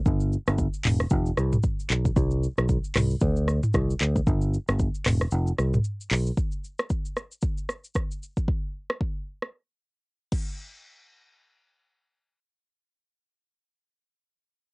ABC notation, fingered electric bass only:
X:1
M:4/4
L:1/16
Q:"Swing 16ths" 1/4=114
K:Flyd
V:1 name="Fingered electric bass" clef=bass
G,,,3 G,,,2 z E,,,2 F,,,2 C,,2 z2 B,,,2 | C,,3 B,,,2 z C,,2 D,,4 C,,2 D,,2 | G,,,3 G,,,2 z E,,,2 F,,,2 C,,2 z2 B,,,2 | z16 |
z16 | z16 | z16 |]